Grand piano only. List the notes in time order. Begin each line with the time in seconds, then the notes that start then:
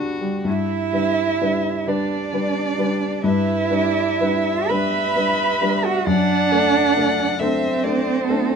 Already playing: G2 D4 G4 B4 D5 B5
0.21 G3
0.44 G2
0.93 G3 D4 B4
1.41 G3 D4 B4
1.87 G3 D4 B4
2.33 G3 D4 B4
2.78 G3 D4 B4
3.24 G2
3.70 G3 D4 B4
4.20 G3 D4 B4
4.70 G3 D4 B4
5.16 G3 D4 B4
5.61 G3 D4 B4
6.07 F#2
6.52 A3 D4 A4
6.97 A3 D4 A4
7.40 A3 D4 A4
7.84 A3 D4 A4
8.29 A3 D4 A4